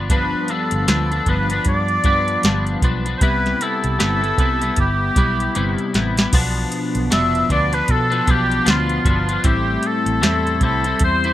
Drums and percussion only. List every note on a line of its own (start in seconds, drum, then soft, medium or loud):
0.10 kick loud
0.10 closed hi-hat medium
0.48 closed hi-hat medium
0.71 closed hi-hat medium
0.88 snare medium
0.88 closed hi-hat loud
1.12 closed hi-hat soft
1.26 kick medium
1.26 closed hi-hat medium
1.50 closed hi-hat medium
1.65 kick medium
1.65 closed hi-hat medium
1.88 closed hi-hat soft
2.04 kick loud
2.04 closed hi-hat medium
2.28 closed hi-hat soft
2.43 snare loud
2.43 closed hi-hat medium
2.67 closed hi-hat soft
2.82 kick medium
2.82 closed hi-hat medium
3.06 closed hi-hat medium
3.21 kick loud
3.21 closed hi-hat loud
3.46 snare soft
3.46 closed hi-hat soft
3.61 closed hi-hat medium
3.84 closed hi-hat medium
4.00 snare medium
4.00 closed hi-hat medium
4.24 closed hi-hat soft
4.38 kick medium
4.38 closed hi-hat medium
4.62 closed hi-hat medium
4.76 kick medium
4.76 closed hi-hat medium
5.16 kick loud
5.16 closed hi-hat medium
5.40 closed hi-hat soft
5.55 closed hi-hat medium
5.78 closed hi-hat soft
5.94 snare medium
5.94 closed hi-hat medium
6.17 snare medium
6.17 closed hi-hat medium
6.33 kick loud
6.33 closed hi-hat loud
6.33 crash loud
6.72 closed hi-hat medium
6.95 closed hi-hat medium
7.12 snare medium
7.12 closed hi-hat medium
7.35 closed hi-hat soft
7.50 kick medium
7.50 closed hi-hat medium
7.73 closed hi-hat medium
7.88 kick medium
7.88 closed hi-hat medium
8.12 closed hi-hat soft
8.28 kick loud
8.28 closed hi-hat medium
8.52 closed hi-hat soft
8.66 snare loud
8.66 closed hi-hat medium
8.89 closed hi-hat soft
9.05 kick medium
9.05 closed hi-hat medium
9.29 closed hi-hat medium
9.44 kick loud
9.44 closed hi-hat medium
9.83 closed hi-hat medium
10.06 closed hi-hat medium
10.23 snare medium
10.23 closed hi-hat medium
10.47 closed hi-hat soft
10.61 kick medium
10.61 closed hi-hat medium
10.84 closed hi-hat medium
10.99 kick medium
10.99 closed hi-hat loud
11.24 closed hi-hat soft